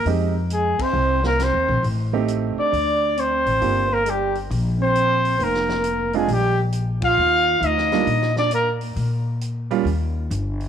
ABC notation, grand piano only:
X:1
M:4/4
L:1/8
Q:"Swing" 1/4=135
K:Eb
V:1 name="Grand piano"
[A,CEG] z6 z | z [=A,CEG]3 z4 | [B,DFG] z6 z | z3 [A,CDF] z4 |
z3 [G,B,DF] z4 | z3 [G,B,_DF] z4 |]